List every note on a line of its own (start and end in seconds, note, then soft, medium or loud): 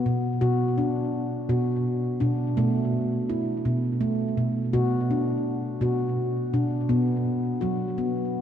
0.00 0.41 B3 medium
0.06 0.19 B2 medium
0.41 1.25 B2 medium
0.41 0.77 F#4 medium
0.78 1.49 D4 medium
1.49 2.05 B2 medium
1.49 2.21 F#4 medium
2.20 2.35 B2 medium
2.20 2.57 D4 medium
2.57 3.41 B2 medium
2.57 3.29 A3 medium
3.29 4.01 E4 medium
3.65 4.21 B2 medium
4.01 4.73 A3 medium
4.37 4.51 B2 medium
4.73 5.57 B2 medium
4.73 5.09 F#4 medium
5.11 5.82 D4 medium
5.81 6.37 B2 medium
5.81 6.54 F#4 medium
6.54 6.67 B2 medium
6.54 6.90 D4 medium
6.89 7.62 B2 medium
6.89 7.62 B3 medium
7.61 7.90 F#3 medium
7.61 7.97 F#4 medium
7.98 8.41 B3 medium